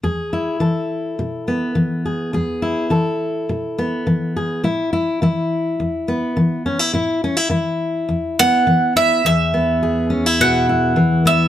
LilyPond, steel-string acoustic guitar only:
\new Staff \with { instrumentName = "Steel-string acoustic guitar" } { \time 4/4 \key e \mixolydian \tempo 4 = 104 << { gis'8 e'8 a'4. b4 gis'8 | gis'8 e'8 a'4. b4 gis'8 | e'8 e'8 e'4. b4 cis'16 e'16 | e'8 cis'16 e'16 e'4. b4 e'8 |
r8 b8 gis'8 cis'16 e'8. e'4 b8 | } \\ { e,4 e4 b,4 e4 | e,4 e4 b,4 e4 | a,4 e4 e,4 e4 | a,4 e4 e,4 e4 |
e,2 b,4 e4 | } >> }